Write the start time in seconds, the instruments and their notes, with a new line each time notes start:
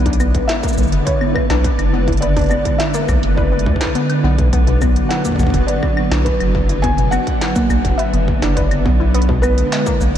Already playing: analog synth bass B1, analog synth pad D3 G#3 B3 E4 B4, synth texture D4
0.06 synth arpeggio sound D4, kick, closed hi-hat
0.13 closed hi-hat
0.20 synth arpeggio sound B3, claves, shaker
0.35 kick, closed hi-hat
0.48 felt piano E5, snare, closed hi-hat
0.63 synth arpeggio sound A#3, kick, closed hi-hat, shaker
0.68 shaker
0.73 shaker
0.78 analog synth bass B1, synth arpeggio sound A#3, shaker
0.83 shaker
0.88 shaker
0.92 analog synth bass F#1, closed hi-hat
1.05 synth arpeggio sound B4, felt piano C#5, kick, closed hi-hat
1.21 synth arpeggio sound B3, claves
1.34 felt piano B4, kick, claves
1.50 analog synth bass B1, synth arpeggio sound D4, snare, closed hi-hat, claves
1.64 synth arpeggio sound B4, kick, closed hi-hat
1.79 analog synth bass F#1, closed hi-hat, claves
1.93 synth arpeggio sound B3
2.08 synth arpeggio sound E4, kick, closed hi-hat
2.13 closed hi-hat
2.17 felt piano D5, closed hi-hat
2.22 synth arpeggio sound B3, closed hi-hat
2.37 synth arpeggio sound D4, kick, closed hi-hat
2.39 closed hi-hat
2.41 closed hi-hat
2.44 closed hi-hat
2.46 closed hi-hat
2.49 synth arpeggio sound B3, felt piano D5, closed hi-hat, claves, shaker
2.65 kick, closed hi-hat
2.78 felt piano E5, snare, closed hi-hat
2.94 synth arpeggio sound A#3, closed hi-hat, shaker
3.09 analog synth bass B1, synth arpeggio sound A#3, kick, claves, shaker
3.23 analog synth bass F#1, closed hi-hat
3.36 synth arpeggio sound B4, felt piano D5, kick
3.52 synth arpeggio sound B3
3.59 closed hi-hat
3.66 analog synth bass D2, kick
3.76 kick
3.81 synth arpeggio sound B4, snare, closed hi-hat
3.86 kick
3.95 synth arpeggio sound B3, closed hi-hat
4.10 closed hi-hat, claves
4.24 analog synth bass B1, synth arpeggio sound B3
4.38 synth arpeggio sound B2, kick, closed hi-hat
4.53 analog synth pad F#3 B3 F#4, synth arpeggio sound B3, kick, closed hi-hat
4.67 synth arpeggio sound B2, closed hi-hat
4.82 synth arpeggio sound B3, kick, claves, shaker
4.96 closed hi-hat
5.09 felt piano F#5, snare, closed hi-hat
5.25 synth arpeggio sound A#3, kick, closed hi-hat, shaker
5.29 kick
5.32 kick
5.36 kick, shaker
5.39 analog synth bass B1, synth arpeggio sound A#3, kick
5.43 kick
5.47 kick
5.50 analog synth bass F#1, kick, closed hi-hat
5.54 kick
5.67 synth arpeggio sound B4, felt piano D5, closed hi-hat
5.83 synth arpeggio sound B3, kick, claves
5.97 claves
6.11 analog synth bass B1, synth arpeggio sound D4, snare, claves
6.24 felt piano B4, synth arpeggio sound B4, kick, closed hi-hat
6.40 analog synth bass F#1, closed hi-hat, claves
6.55 synth arpeggio sound B3, kick
6.69 synth arpeggio sound E4, closed hi-hat
6.82 synth arpeggio sound B3, felt piano G#5, kick, closed hi-hat
6.98 synth arpeggio sound B2, closed hi-hat
7.11 synth arpeggio sound B3, felt piano F#5, claves, shaker
7.27 kick, closed hi-hat
7.41 snare, closed hi-hat
7.56 synth arpeggio sound A#3, kick, closed hi-hat, shaker
7.70 analog synth bass B1, synth arpeggio sound A#3, claves, shaker
7.85 analog synth bass F#1, kick, closed hi-hat
7.98 synth arpeggio sound B4, felt piano E5, closed hi-hat
8.13 analog synth bass F#1, synth arpeggio sound B3, closed hi-hat
8.28 kick
8.42 analog synth bass F#1, synth arpeggio sound D4, snare, closed hi-hat
8.55 synth arpeggio sound B4, felt piano D5, kick, closed hi-hat
8.71 closed hi-hat, claves
8.86 analog synth bass B1, synth arpeggio sound B3, kick
9.00 synth arpeggio sound E4
9.14 analog synth pad D3 G#3 E4 B4, synth arpeggio sound B3, closed hi-hat
9.22 closed hi-hat
9.29 synth arpeggio sound B2, kick
9.42 synth arpeggio sound B3, felt piano B4, claves, shaker
9.58 closed hi-hat
9.72 snare, closed hi-hat
9.87 synth arpeggio sound A#3, kick, closed hi-hat, shaker
10.01 analog synth bass B1, synth arpeggio sound A#3, shaker